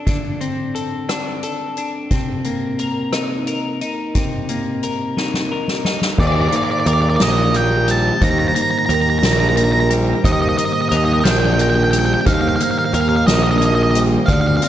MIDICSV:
0, 0, Header, 1, 7, 480
1, 0, Start_track
1, 0, Tempo, 679502
1, 47, Time_signature, 6, 3, 24, 8
1, 5328, Tempo, 674157
1, 10413, End_track
2, 0, Start_track
2, 0, Title_t, "Lead electric guitar"
2, 0, Program_c, 0, 29
2, 4378, Note_on_c, 0, 74, 58
2, 4426, Note_off_c, 0, 74, 0
2, 4429, Note_on_c, 0, 74, 43
2, 4482, Note_off_c, 0, 74, 0
2, 4490, Note_on_c, 0, 74, 51
2, 4528, Note_off_c, 0, 74, 0
2, 4530, Note_on_c, 0, 74, 51
2, 4579, Note_off_c, 0, 74, 0
2, 4581, Note_on_c, 0, 74, 59
2, 4632, Note_off_c, 0, 74, 0
2, 4635, Note_on_c, 0, 74, 50
2, 4687, Note_off_c, 0, 74, 0
2, 4695, Note_on_c, 0, 74, 56
2, 4738, Note_off_c, 0, 74, 0
2, 4741, Note_on_c, 0, 74, 52
2, 4794, Note_off_c, 0, 74, 0
2, 4801, Note_on_c, 0, 74, 57
2, 4852, Note_off_c, 0, 74, 0
2, 4855, Note_on_c, 0, 74, 46
2, 4895, Note_off_c, 0, 74, 0
2, 4898, Note_on_c, 0, 74, 58
2, 4951, Note_off_c, 0, 74, 0
2, 4957, Note_on_c, 0, 74, 48
2, 5010, Note_off_c, 0, 74, 0
2, 5013, Note_on_c, 0, 74, 53
2, 5056, Note_off_c, 0, 74, 0
2, 5059, Note_on_c, 0, 74, 41
2, 5102, Note_off_c, 0, 74, 0
2, 5105, Note_on_c, 0, 75, 69
2, 5340, Note_on_c, 0, 79, 74
2, 5343, Note_off_c, 0, 75, 0
2, 5582, Note_off_c, 0, 79, 0
2, 5588, Note_on_c, 0, 81, 74
2, 5822, Note_off_c, 0, 81, 0
2, 5824, Note_on_c, 0, 82, 80
2, 5870, Note_off_c, 0, 82, 0
2, 5873, Note_on_c, 0, 82, 54
2, 5928, Note_off_c, 0, 82, 0
2, 5934, Note_on_c, 0, 82, 62
2, 5989, Note_off_c, 0, 82, 0
2, 5995, Note_on_c, 0, 82, 59
2, 6045, Note_off_c, 0, 82, 0
2, 6048, Note_on_c, 0, 82, 67
2, 6093, Note_off_c, 0, 82, 0
2, 6096, Note_on_c, 0, 82, 58
2, 6152, Note_off_c, 0, 82, 0
2, 6157, Note_on_c, 0, 82, 64
2, 6211, Note_off_c, 0, 82, 0
2, 6214, Note_on_c, 0, 82, 59
2, 6262, Note_off_c, 0, 82, 0
2, 6265, Note_on_c, 0, 82, 73
2, 6320, Note_off_c, 0, 82, 0
2, 6326, Note_on_c, 0, 82, 63
2, 6373, Note_off_c, 0, 82, 0
2, 6376, Note_on_c, 0, 82, 73
2, 6431, Note_off_c, 0, 82, 0
2, 6435, Note_on_c, 0, 82, 64
2, 6491, Note_off_c, 0, 82, 0
2, 6500, Note_on_c, 0, 82, 68
2, 6547, Note_off_c, 0, 82, 0
2, 6550, Note_on_c, 0, 82, 60
2, 6598, Note_off_c, 0, 82, 0
2, 6601, Note_on_c, 0, 82, 69
2, 6648, Note_off_c, 0, 82, 0
2, 6651, Note_on_c, 0, 82, 62
2, 6707, Note_off_c, 0, 82, 0
2, 6714, Note_on_c, 0, 82, 70
2, 6768, Note_off_c, 0, 82, 0
2, 6771, Note_on_c, 0, 82, 61
2, 6820, Note_off_c, 0, 82, 0
2, 6823, Note_on_c, 0, 82, 62
2, 6877, Note_off_c, 0, 82, 0
2, 6880, Note_on_c, 0, 82, 52
2, 6934, Note_off_c, 0, 82, 0
2, 6937, Note_on_c, 0, 82, 61
2, 6993, Note_off_c, 0, 82, 0
2, 7256, Note_on_c, 0, 75, 78
2, 7306, Note_off_c, 0, 75, 0
2, 7309, Note_on_c, 0, 75, 58
2, 7366, Note_off_c, 0, 75, 0
2, 7375, Note_on_c, 0, 75, 61
2, 7423, Note_off_c, 0, 75, 0
2, 7426, Note_on_c, 0, 75, 57
2, 7482, Note_off_c, 0, 75, 0
2, 7488, Note_on_c, 0, 75, 65
2, 7540, Note_off_c, 0, 75, 0
2, 7543, Note_on_c, 0, 75, 57
2, 7597, Note_off_c, 0, 75, 0
2, 7600, Note_on_c, 0, 75, 70
2, 7656, Note_off_c, 0, 75, 0
2, 7659, Note_on_c, 0, 75, 64
2, 7709, Note_off_c, 0, 75, 0
2, 7712, Note_on_c, 0, 75, 72
2, 7765, Note_off_c, 0, 75, 0
2, 7768, Note_on_c, 0, 75, 54
2, 7822, Note_off_c, 0, 75, 0
2, 7825, Note_on_c, 0, 75, 63
2, 7882, Note_off_c, 0, 75, 0
2, 7886, Note_on_c, 0, 75, 53
2, 7933, Note_off_c, 0, 75, 0
2, 7935, Note_on_c, 0, 75, 58
2, 7958, Note_on_c, 0, 79, 87
2, 7992, Note_off_c, 0, 75, 0
2, 8007, Note_off_c, 0, 79, 0
2, 8010, Note_on_c, 0, 79, 62
2, 8064, Note_off_c, 0, 79, 0
2, 8070, Note_on_c, 0, 79, 71
2, 8110, Note_off_c, 0, 79, 0
2, 8113, Note_on_c, 0, 79, 66
2, 8166, Note_off_c, 0, 79, 0
2, 8172, Note_on_c, 0, 79, 80
2, 8224, Note_off_c, 0, 79, 0
2, 8227, Note_on_c, 0, 79, 66
2, 8280, Note_off_c, 0, 79, 0
2, 8286, Note_on_c, 0, 79, 82
2, 8322, Note_off_c, 0, 79, 0
2, 8325, Note_on_c, 0, 79, 70
2, 8378, Note_off_c, 0, 79, 0
2, 8389, Note_on_c, 0, 79, 76
2, 8434, Note_off_c, 0, 79, 0
2, 8437, Note_on_c, 0, 79, 71
2, 8490, Note_off_c, 0, 79, 0
2, 8495, Note_on_c, 0, 79, 75
2, 8539, Note_off_c, 0, 79, 0
2, 8542, Note_on_c, 0, 79, 65
2, 8595, Note_off_c, 0, 79, 0
2, 8601, Note_on_c, 0, 79, 74
2, 8648, Note_off_c, 0, 79, 0
2, 8651, Note_on_c, 0, 79, 62
2, 8687, Note_off_c, 0, 79, 0
2, 8690, Note_on_c, 0, 77, 83
2, 8742, Note_off_c, 0, 77, 0
2, 8744, Note_on_c, 0, 77, 63
2, 8791, Note_off_c, 0, 77, 0
2, 8793, Note_on_c, 0, 77, 69
2, 8846, Note_off_c, 0, 77, 0
2, 8849, Note_on_c, 0, 77, 63
2, 8897, Note_off_c, 0, 77, 0
2, 8900, Note_on_c, 0, 77, 68
2, 8946, Note_off_c, 0, 77, 0
2, 8949, Note_on_c, 0, 77, 65
2, 9002, Note_off_c, 0, 77, 0
2, 9007, Note_on_c, 0, 77, 70
2, 9058, Note_off_c, 0, 77, 0
2, 9061, Note_on_c, 0, 77, 66
2, 9107, Note_off_c, 0, 77, 0
2, 9109, Note_on_c, 0, 77, 75
2, 9162, Note_off_c, 0, 77, 0
2, 9174, Note_on_c, 0, 77, 62
2, 9218, Note_off_c, 0, 77, 0
2, 9221, Note_on_c, 0, 77, 66
2, 9274, Note_off_c, 0, 77, 0
2, 9277, Note_on_c, 0, 77, 55
2, 9328, Note_off_c, 0, 77, 0
2, 9331, Note_on_c, 0, 77, 65
2, 9384, Note_off_c, 0, 77, 0
2, 9404, Note_on_c, 0, 75, 76
2, 9461, Note_off_c, 0, 75, 0
2, 9464, Note_on_c, 0, 75, 53
2, 9519, Note_off_c, 0, 75, 0
2, 9522, Note_on_c, 0, 75, 64
2, 9574, Note_off_c, 0, 75, 0
2, 9577, Note_on_c, 0, 75, 63
2, 9622, Note_off_c, 0, 75, 0
2, 9625, Note_on_c, 0, 75, 67
2, 9678, Note_off_c, 0, 75, 0
2, 9681, Note_on_c, 0, 75, 59
2, 9738, Note_off_c, 0, 75, 0
2, 9748, Note_on_c, 0, 75, 65
2, 9803, Note_off_c, 0, 75, 0
2, 9806, Note_on_c, 0, 75, 59
2, 9858, Note_off_c, 0, 75, 0
2, 9861, Note_on_c, 0, 75, 59
2, 9918, Note_off_c, 0, 75, 0
2, 10111, Note_on_c, 0, 77, 79
2, 10160, Note_off_c, 0, 77, 0
2, 10163, Note_on_c, 0, 77, 55
2, 10215, Note_off_c, 0, 77, 0
2, 10218, Note_on_c, 0, 77, 72
2, 10260, Note_off_c, 0, 77, 0
2, 10263, Note_on_c, 0, 77, 66
2, 10317, Note_off_c, 0, 77, 0
2, 10330, Note_on_c, 0, 77, 78
2, 10378, Note_off_c, 0, 77, 0
2, 10381, Note_on_c, 0, 77, 65
2, 10413, Note_off_c, 0, 77, 0
2, 10413, End_track
3, 0, Start_track
3, 0, Title_t, "Vibraphone"
3, 0, Program_c, 1, 11
3, 4367, Note_on_c, 1, 72, 68
3, 4848, Note_off_c, 1, 72, 0
3, 4848, Note_on_c, 1, 70, 57
3, 5080, Note_off_c, 1, 70, 0
3, 5089, Note_on_c, 1, 70, 69
3, 5569, Note_off_c, 1, 70, 0
3, 5569, Note_on_c, 1, 72, 65
3, 5799, Note_off_c, 1, 72, 0
3, 5808, Note_on_c, 1, 72, 78
3, 6290, Note_off_c, 1, 72, 0
3, 6290, Note_on_c, 1, 70, 64
3, 6521, Note_off_c, 1, 70, 0
3, 6530, Note_on_c, 1, 70, 69
3, 7010, Note_on_c, 1, 72, 61
3, 7011, Note_off_c, 1, 70, 0
3, 7242, Note_off_c, 1, 72, 0
3, 7250, Note_on_c, 1, 72, 78
3, 7728, Note_on_c, 1, 70, 62
3, 7731, Note_off_c, 1, 72, 0
3, 7964, Note_off_c, 1, 70, 0
3, 7973, Note_on_c, 1, 70, 71
3, 8452, Note_off_c, 1, 70, 0
3, 8689, Note_on_c, 1, 72, 80
3, 9169, Note_off_c, 1, 72, 0
3, 9170, Note_on_c, 1, 70, 66
3, 9399, Note_off_c, 1, 70, 0
3, 9407, Note_on_c, 1, 70, 69
3, 9887, Note_off_c, 1, 70, 0
3, 9892, Note_on_c, 1, 72, 64
3, 10129, Note_off_c, 1, 72, 0
3, 10132, Note_on_c, 1, 74, 75
3, 10413, Note_off_c, 1, 74, 0
3, 10413, End_track
4, 0, Start_track
4, 0, Title_t, "Ambient pad"
4, 0, Program_c, 2, 92
4, 4378, Note_on_c, 2, 51, 75
4, 4379, Note_on_c, 2, 58, 70
4, 4384, Note_on_c, 2, 67, 89
4, 10102, Note_off_c, 2, 51, 0
4, 10103, Note_off_c, 2, 58, 0
4, 10105, Note_off_c, 2, 67, 0
4, 10122, Note_on_c, 2, 60, 74
4, 10125, Note_on_c, 2, 65, 79
4, 10126, Note_on_c, 2, 50, 79
4, 10413, Note_off_c, 2, 50, 0
4, 10413, Note_off_c, 2, 60, 0
4, 10413, Note_off_c, 2, 65, 0
4, 10413, End_track
5, 0, Start_track
5, 0, Title_t, "Clean electric guitar"
5, 0, Program_c, 3, 27
5, 0, Note_on_c, 3, 62, 38
5, 0, Note_on_c, 3, 69, 38
5, 48, Note_on_c, 3, 50, 39
5, 288, Note_on_c, 3, 60, 42
5, 520, Note_off_c, 3, 69, 0
5, 529, Note_on_c, 3, 69, 43
5, 760, Note_off_c, 3, 62, 0
5, 768, Note_on_c, 3, 62, 42
5, 1004, Note_off_c, 3, 69, 0
5, 1013, Note_on_c, 3, 69, 43
5, 1249, Note_off_c, 3, 62, 0
5, 1251, Note_off_c, 3, 50, 0
5, 1257, Note_on_c, 3, 62, 42
5, 1490, Note_on_c, 3, 48, 44
5, 1493, Note_off_c, 3, 69, 0
5, 1495, Note_off_c, 3, 62, 0
5, 1730, Note_off_c, 3, 60, 0
5, 1733, Note_on_c, 3, 58, 42
5, 1976, Note_on_c, 3, 70, 46
5, 2214, Note_on_c, 3, 63, 43
5, 2447, Note_off_c, 3, 70, 0
5, 2455, Note_on_c, 3, 70, 44
5, 2686, Note_off_c, 3, 63, 0
5, 2692, Note_off_c, 3, 48, 0
5, 2694, Note_on_c, 3, 63, 39
5, 2934, Note_on_c, 3, 48, 45
5, 2955, Note_off_c, 3, 58, 0
5, 3174, Note_on_c, 3, 58, 40
5, 3408, Note_off_c, 3, 70, 0
5, 3416, Note_on_c, 3, 70, 44
5, 3648, Note_off_c, 3, 63, 0
5, 3657, Note_on_c, 3, 63, 43
5, 3888, Note_off_c, 3, 70, 0
5, 3896, Note_on_c, 3, 70, 44
5, 4126, Note_off_c, 3, 63, 0
5, 4132, Note_off_c, 3, 48, 0
5, 4135, Note_on_c, 3, 63, 43
5, 4372, Note_off_c, 3, 58, 0
5, 4373, Note_off_c, 3, 63, 0
5, 4373, Note_off_c, 3, 70, 0
5, 4376, Note_on_c, 3, 51, 55
5, 4613, Note_on_c, 3, 58, 54
5, 4853, Note_on_c, 3, 70, 61
5, 5325, Note_off_c, 3, 58, 0
5, 5328, Note_on_c, 3, 58, 55
5, 5565, Note_on_c, 3, 55, 54
5, 5807, Note_off_c, 3, 51, 0
5, 5809, Note_on_c, 3, 51, 55
5, 6043, Note_off_c, 3, 58, 0
5, 6046, Note_on_c, 3, 58, 55
5, 6285, Note_off_c, 3, 70, 0
5, 6287, Note_on_c, 3, 70, 60
5, 6762, Note_off_c, 3, 58, 0
5, 6765, Note_on_c, 3, 58, 55
5, 7004, Note_off_c, 3, 55, 0
5, 7007, Note_on_c, 3, 55, 53
5, 7246, Note_off_c, 3, 51, 0
5, 7249, Note_on_c, 3, 51, 60
5, 7487, Note_off_c, 3, 58, 0
5, 7490, Note_on_c, 3, 58, 58
5, 7726, Note_off_c, 3, 70, 0
5, 7729, Note_on_c, 3, 70, 61
5, 7966, Note_on_c, 3, 62, 60
5, 8200, Note_off_c, 3, 58, 0
5, 8208, Note_on_c, 3, 58, 54
5, 8209, Note_off_c, 3, 55, 0
5, 8450, Note_off_c, 3, 51, 0
5, 8450, Note_on_c, 3, 55, 57
5, 8694, Note_on_c, 3, 51, 63
5, 8922, Note_off_c, 3, 58, 0
5, 8929, Note_off_c, 3, 70, 0
5, 8930, Note_on_c, 3, 58, 60
5, 9174, Note_on_c, 3, 70, 63
5, 9640, Note_off_c, 3, 58, 0
5, 9648, Note_off_c, 3, 55, 0
5, 9649, Note_on_c, 3, 58, 59
5, 9886, Note_on_c, 3, 55, 58
5, 9890, Note_off_c, 3, 51, 0
5, 10126, Note_off_c, 3, 55, 0
5, 10126, Note_on_c, 3, 50, 62
5, 10127, Note_off_c, 3, 58, 0
5, 10129, Note_off_c, 3, 70, 0
5, 10369, Note_on_c, 3, 60, 58
5, 10391, Note_off_c, 3, 62, 0
5, 10413, Note_off_c, 3, 50, 0
5, 10413, Note_off_c, 3, 60, 0
5, 10413, End_track
6, 0, Start_track
6, 0, Title_t, "Picked electric bass"
6, 0, Program_c, 4, 34
6, 4368, Note_on_c, 4, 39, 80
6, 4581, Note_off_c, 4, 39, 0
6, 4847, Note_on_c, 4, 39, 74
6, 5060, Note_off_c, 4, 39, 0
6, 5088, Note_on_c, 4, 34, 70
6, 5727, Note_off_c, 4, 34, 0
6, 5806, Note_on_c, 4, 39, 75
6, 6021, Note_off_c, 4, 39, 0
6, 6288, Note_on_c, 4, 39, 75
6, 6502, Note_off_c, 4, 39, 0
6, 6528, Note_on_c, 4, 34, 78
6, 7168, Note_off_c, 4, 34, 0
6, 7251, Note_on_c, 4, 39, 87
6, 7464, Note_off_c, 4, 39, 0
6, 7730, Note_on_c, 4, 39, 82
6, 7943, Note_off_c, 4, 39, 0
6, 7967, Note_on_c, 4, 34, 85
6, 8606, Note_off_c, 4, 34, 0
6, 8691, Note_on_c, 4, 39, 85
6, 8903, Note_off_c, 4, 39, 0
6, 9168, Note_on_c, 4, 39, 86
6, 9381, Note_off_c, 4, 39, 0
6, 9409, Note_on_c, 4, 34, 78
6, 10045, Note_off_c, 4, 34, 0
6, 10127, Note_on_c, 4, 38, 78
6, 10339, Note_off_c, 4, 38, 0
6, 10413, End_track
7, 0, Start_track
7, 0, Title_t, "Drums"
7, 48, Note_on_c, 9, 36, 65
7, 48, Note_on_c, 9, 42, 50
7, 118, Note_off_c, 9, 42, 0
7, 119, Note_off_c, 9, 36, 0
7, 289, Note_on_c, 9, 42, 34
7, 360, Note_off_c, 9, 42, 0
7, 533, Note_on_c, 9, 42, 33
7, 604, Note_off_c, 9, 42, 0
7, 771, Note_on_c, 9, 37, 62
7, 771, Note_on_c, 9, 42, 45
7, 842, Note_off_c, 9, 37, 0
7, 842, Note_off_c, 9, 42, 0
7, 1009, Note_on_c, 9, 42, 33
7, 1079, Note_off_c, 9, 42, 0
7, 1249, Note_on_c, 9, 42, 32
7, 1319, Note_off_c, 9, 42, 0
7, 1488, Note_on_c, 9, 42, 46
7, 1490, Note_on_c, 9, 36, 66
7, 1559, Note_off_c, 9, 42, 0
7, 1561, Note_off_c, 9, 36, 0
7, 1727, Note_on_c, 9, 42, 34
7, 1797, Note_off_c, 9, 42, 0
7, 1969, Note_on_c, 9, 42, 36
7, 2040, Note_off_c, 9, 42, 0
7, 2208, Note_on_c, 9, 37, 59
7, 2208, Note_on_c, 9, 42, 44
7, 2279, Note_off_c, 9, 37, 0
7, 2279, Note_off_c, 9, 42, 0
7, 2451, Note_on_c, 9, 42, 37
7, 2521, Note_off_c, 9, 42, 0
7, 2693, Note_on_c, 9, 42, 36
7, 2763, Note_off_c, 9, 42, 0
7, 2931, Note_on_c, 9, 42, 51
7, 2933, Note_on_c, 9, 36, 67
7, 3001, Note_off_c, 9, 42, 0
7, 3004, Note_off_c, 9, 36, 0
7, 3169, Note_on_c, 9, 42, 41
7, 3240, Note_off_c, 9, 42, 0
7, 3410, Note_on_c, 9, 42, 38
7, 3481, Note_off_c, 9, 42, 0
7, 3652, Note_on_c, 9, 38, 33
7, 3723, Note_off_c, 9, 38, 0
7, 3772, Note_on_c, 9, 38, 34
7, 3842, Note_off_c, 9, 38, 0
7, 4011, Note_on_c, 9, 38, 35
7, 4082, Note_off_c, 9, 38, 0
7, 4130, Note_on_c, 9, 38, 47
7, 4201, Note_off_c, 9, 38, 0
7, 4249, Note_on_c, 9, 38, 42
7, 4320, Note_off_c, 9, 38, 0
7, 4366, Note_on_c, 9, 49, 87
7, 4369, Note_on_c, 9, 36, 89
7, 4436, Note_off_c, 9, 49, 0
7, 4440, Note_off_c, 9, 36, 0
7, 4608, Note_on_c, 9, 42, 51
7, 4678, Note_off_c, 9, 42, 0
7, 4847, Note_on_c, 9, 42, 47
7, 4918, Note_off_c, 9, 42, 0
7, 5086, Note_on_c, 9, 38, 92
7, 5086, Note_on_c, 9, 42, 71
7, 5157, Note_off_c, 9, 38, 0
7, 5157, Note_off_c, 9, 42, 0
7, 5328, Note_on_c, 9, 42, 53
7, 5399, Note_off_c, 9, 42, 0
7, 5566, Note_on_c, 9, 42, 60
7, 5638, Note_off_c, 9, 42, 0
7, 5807, Note_on_c, 9, 42, 70
7, 5808, Note_on_c, 9, 36, 88
7, 5878, Note_off_c, 9, 42, 0
7, 5879, Note_off_c, 9, 36, 0
7, 6051, Note_on_c, 9, 42, 61
7, 6122, Note_off_c, 9, 42, 0
7, 6292, Note_on_c, 9, 42, 53
7, 6363, Note_off_c, 9, 42, 0
7, 6531, Note_on_c, 9, 38, 89
7, 6531, Note_on_c, 9, 42, 81
7, 6602, Note_off_c, 9, 38, 0
7, 6602, Note_off_c, 9, 42, 0
7, 6772, Note_on_c, 9, 42, 56
7, 6843, Note_off_c, 9, 42, 0
7, 7010, Note_on_c, 9, 42, 64
7, 7081, Note_off_c, 9, 42, 0
7, 7251, Note_on_c, 9, 36, 93
7, 7253, Note_on_c, 9, 42, 82
7, 7322, Note_off_c, 9, 36, 0
7, 7324, Note_off_c, 9, 42, 0
7, 7494, Note_on_c, 9, 42, 60
7, 7565, Note_off_c, 9, 42, 0
7, 7731, Note_on_c, 9, 42, 58
7, 7802, Note_off_c, 9, 42, 0
7, 7969, Note_on_c, 9, 38, 100
7, 7969, Note_on_c, 9, 42, 76
7, 8040, Note_off_c, 9, 38, 0
7, 8040, Note_off_c, 9, 42, 0
7, 8211, Note_on_c, 9, 42, 61
7, 8282, Note_off_c, 9, 42, 0
7, 8451, Note_on_c, 9, 42, 59
7, 8523, Note_off_c, 9, 42, 0
7, 8689, Note_on_c, 9, 42, 81
7, 8691, Note_on_c, 9, 36, 93
7, 8761, Note_off_c, 9, 42, 0
7, 8762, Note_off_c, 9, 36, 0
7, 8931, Note_on_c, 9, 42, 59
7, 9003, Note_off_c, 9, 42, 0
7, 9169, Note_on_c, 9, 42, 54
7, 9240, Note_off_c, 9, 42, 0
7, 9412, Note_on_c, 9, 38, 93
7, 9412, Note_on_c, 9, 42, 75
7, 9483, Note_off_c, 9, 38, 0
7, 9483, Note_off_c, 9, 42, 0
7, 9652, Note_on_c, 9, 42, 55
7, 9724, Note_off_c, 9, 42, 0
7, 9891, Note_on_c, 9, 42, 60
7, 9962, Note_off_c, 9, 42, 0
7, 10128, Note_on_c, 9, 36, 94
7, 10128, Note_on_c, 9, 42, 83
7, 10199, Note_off_c, 9, 36, 0
7, 10199, Note_off_c, 9, 42, 0
7, 10366, Note_on_c, 9, 42, 61
7, 10413, Note_off_c, 9, 42, 0
7, 10413, End_track
0, 0, End_of_file